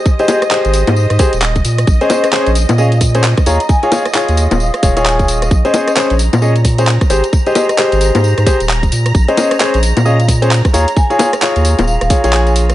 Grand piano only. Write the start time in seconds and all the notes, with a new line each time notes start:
0.20 G4 G#4 C5
0.28 G4 G#4 C5
0.51 G4 G#4 C5
1.19 G4 G#4 C5
2.01 C#4 G#4 C5
2.10 C#4 G#4 C5
2.33 C#4 G#4 C5
2.78 C#4 G#4 D#5
3.15 C#4 G#4 C5
3.47 F4 G#4 C#5
3.83 F4 G#4 C#5
3.92 F4 G#4 C#5
4.15 F4 G#4 C#5
4.83 F4 G#4 C#5
4.97 F4 G#4 C#5
5.65 C#4 G#4 C5
5.74 C#4 G#4 C5
5.96 C#4 G#4 C5
6.42 C#4 G#4 D#5
6.78 C#4 G#4 C5
7.10 G4 G#4 C5
7.47 G4 G#4 C5
7.55 G4 G#4 C5
7.78 G4 G#4 C5
8.46 G4 G#4 C5
9.28 C#4 G#4 C5
9.37 C#4 G#4 C5
9.60 C#4 G#4 C5
10.05 C#4 G#4 D#5
10.42 C#4 G#4 C5
10.74 F4 G#4 C#5
11.10 F4 G#4 C#5
11.19 F4 G#4 C#5
11.42 F4 G#4 C#5
12.10 F4 G#4 C#5
12.24 F4 G#4 C#5